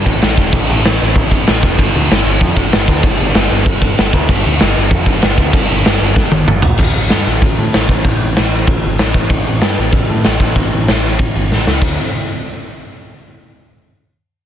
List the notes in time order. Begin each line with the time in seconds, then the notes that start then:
0.06 A1, kick
0.22 A1, snare, crash
0.37 E1, kick
0.53 A1, kick, crash
0.69 A1
0.84 A1, snare, crash
1.01 A1
1.16 A1, kick, crash
1.31 kick
1.47 A1, snare, crash
1.63 E1, kick
1.79 G1, kick, crash
1.95 D2
2.11 G1, snare, crash
2.25 G1
2.41 F2, kick, crash
2.57 G1, kick
2.72 G1, snare, crash
2.88 D2, kick
3.03 G1, kick, crash
3.20 G1
3.34 G1, snare, crash
3.51 G1
3.66 G1, kick, crash
3.82 kick
3.98 G1, snare, crash
4.13 D2, kick
4.29 G1, kick, crash
4.46 D2
4.60 G1, snare, crash
4.77 G1
4.90 F2, kick, crash
5.06 G1, kick
5.22 G1, snare, crash
5.38 D2, kick
5.53 G1, kick, crash
5.71 G1
5.85 G1, snare, crash
6.01 G1
6.16 G1, kick, snare
6.32 high tom
6.47 G1, mid tom
6.62 A#1, floor tom
6.78 A1, kick, crash
6.96 A1
7.09 G2, snare, open hi-hat
7.27 A1
7.42 A1, kick, open hi-hat
7.58 A2
7.73 A1, snare, open hi-hat
7.89 A1, kick
8.05 A1, kick, open hi-hat
8.22 A1
8.36 A1, snare, open hi-hat
8.67 A1, kick, open hi-hat
8.86 G1
8.98 A1, snare, open hi-hat
9.14 A1, kick
9.29 A1, kick, open hi-hat
9.48 A1
9.61 G2, snare, open hi-hat
9.79 A1
9.92 A1, kick, open hi-hat
10.10 A2
10.24 A1, snare, open hi-hat
10.40 A1, kick
10.55 A1, kick, open hi-hat
10.73 A1
10.87 A1, snare, open hi-hat
11.19 A1, kick, open hi-hat
11.35 G1
11.51 A1, snare
11.67 C#2, snare
11.81 D2, kick, crash